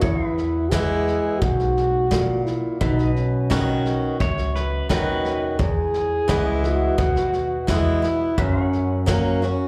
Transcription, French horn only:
0.01 0.71 E4 medium
0.70 1.41 G#4 medium
1.39 2.46 F#4 loud
2.45 2.80 E4 medium
2.80 3.13 D#4 medium
3.15 4.16 C#4 medium
5.60 6.60 G#4 loud
6.65 7.71 F#4 loud
7.70 8.40 E4 loud
8.39 9.08 C#4 loud
9.09 9.41 C#4 medium
9.43 9.68 C#4 medium

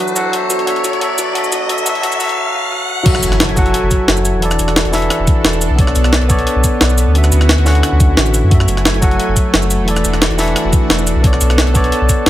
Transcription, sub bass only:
3.23 3.47 F#1 loud
3.49 3.73 F#1 medium
3.83 3.90 F#1 loud
4.08 4.33 F#1 loud
4.34 4.58 E1 medium
4.59 4.84 E1 loud
4.85 5.09 E1 medium
5.19 5.27 E1 loud
5.44 5.69 E1 loud
5.70 5.94 B1 medium
5.96 6.20 B1 loud
6.21 6.45 B1 medium
6.56 6.63 B1 loud
6.81 7.05 B1 loud
7.07 7.31 D2 medium
7.32 7.57 D2 loud
7.58 7.82 D2 medium
7.92 8.16 D2 medium
8.17 8.42 A1 medium
8.43 8.67 F#2 loud
8.68 8.93 F#1 loud
8.94 9.18 F#1 medium
9.28 9.36 F#1 loud
9.54 9.78 F#1 loud
9.79 10.03 E1 loud
10.05 10.29 E1 loud
10.30 10.54 E1 medium
10.65 10.72 E1 loud
10.90 11.14 E1 loud
11.16 11.40 B1 medium
11.41 11.66 B1 loud
11.67 11.91 B1 medium
12.01 12.08 B1 loud
12.26 12.30 B1 loud

